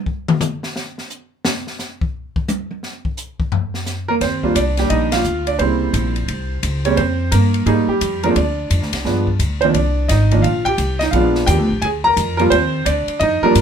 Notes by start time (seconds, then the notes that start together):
0.06 kick
0.28 mid tom
0.41 hi-hat pedal, mid tom
0.63 snare
0.76 snare
0.98 snare
1.10 hi-hat pedal
1.45 snare
1.67 snare
1.79 snare, hi-hat pedal
2.01 kick
2.36 kick
2.48 hi-hat pedal, high tom
2.71 high tom
2.83 snare
3.05 kick
3.17 hi-hat pedal
3.40 kick
3.52 floor tom
3.74 snare
3.86 snare, hi-hat pedal
4.08 A#3 A#4, floor tom
4.21 D#2 C4 C5, kick, snare, ride
4.43 G3 A#3 D4 F4, kick
4.55 C2 D4 D5, kick, hi-hat pedal, ride
4.77 G3 A#3 D4 G4, snare, ride
4.90 A#1 D#4 D#5, ride
5.12 F4 F5, snare, ride
5.24 D2, hi-hat pedal
5.47 D4 D5, ride
5.59 C2 C#3 G3 A#3 C4 E4 C5, kick, ride
5.93 A#1, kick, hi-hat pedal, ride
6.16 ride
6.28 C2, kick, ride
6.63 C#2, kick, hi-hat pedal, ride
6.85 G3 G#3 A#3 C4 C#4 C#5, ride
6.97 F2 C4 C5, kick, ride
7.31 G2 A#3 A#4, kick, hi-hat pedal, ride
7.54 ride
7.66 G#2 G3 G#3 A#3 D#4 G#4, ride
7.88 G3 G4, muted upright bass stroke
8.01 F2, kick, hi-hat pedal, ride
8.23 F3 G#3 A#3 C4 D4 A#4, ride
8.36 D2 D4 D5, kick, ride
8.70 F2, kick, hi-hat pedal, ride
8.81 D2, snare
8.93 C2, snare, ride
9.05 G2 F3 G#3 B3 D4, kick, snare
9.27 kick
9.39 D2, kick, hi-hat pedal, ride
9.61 D#3 F3 A#3 C4 D4 C5, ride
9.74 C2 D4 D5, kick, ride
10.08 G#1 D#4 D#5, kick, snare, hi-hat pedal, ride
10.31 D#3 F3 A#3 D4, kick, ride
10.42 A#1 F4 F5, ride
10.65 G4 G5, kick, ride
10.78 C2, kick, hi-hat pedal, ride
10.99 D#4 D#5, snare, ride
11.11 A#1 F3 G#3 F4 F5, kick, ride
11.15 B3 D4
11.35 snare
11.46 D#2 G4 G5, hi-hat pedal, ride
11.59 D2
11.70 A#1
11.82 D2 G#4 G#5, kick, ride
12.04 A#4 A#5
12.17 F2, kick, hi-hat pedal, ride
12.37 F3 G3 A#3 F4 A#4, ride
12.50 D#2 C4 C5, kick, ride
12.85 D2 D4 D5, kick, hi-hat pedal, ride
13.07 muted upright bass stroke, ride
13.20 F2 D#4 D#5, kick, ride
13.42 F3 G3 A#3 D4 A#4, muted upright bass stroke
13.55 G#2, kick, hi-hat pedal, ride